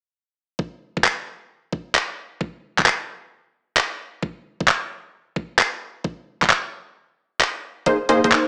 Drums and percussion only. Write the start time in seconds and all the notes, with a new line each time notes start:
0.59 kick
0.97 kick
1.04 clap
1.73 kick
1.95 clap
2.41 kick
2.78 kick, clap
2.86 clap
3.77 clap
4.23 kick
4.60 kick
4.68 clap
5.36 kick
5.59 clap
6.04 kick
6.42 kick, clap
6.50 clap
7.41 clap
7.86 kick, closed hi-hat
8.09 open hi-hat
8.24 kick, closed hi-hat
8.32 clap